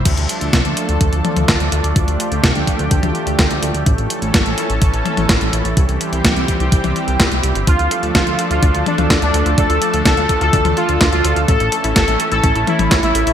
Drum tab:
CC |x---------------|----------------|----------------|----------------|
HH |xxxxxxxxxxxxxxxx|xxxxxxxxxxxxxxxx|xxxxxxxxxxxxxxxx|xxxxxxxxxxxxxxxx|
SD |----o-------o---|----o-------o---|----o-------o---|----o-------o---|
T1 |----------oo----|---------o------|----------oo----|---------o------|
BD |o---o---o---o---|o---o-o-o---o---|o---o---o---o---|o---o-o-o---o---|

CC |----------------|----------------|----------------|
HH |xxxxxxxxxxxxxxxx|xxxxxxxxxxxxxxxx|xxxxxxxxxxxxxxxx|
SD |----o-------o---|----o-------o---|----o-------o---|
T1 |----------oo----|---------o------|----------oo----|
BD |o---o---o---o---|o---o-o-o---o---|o---o---o---o---|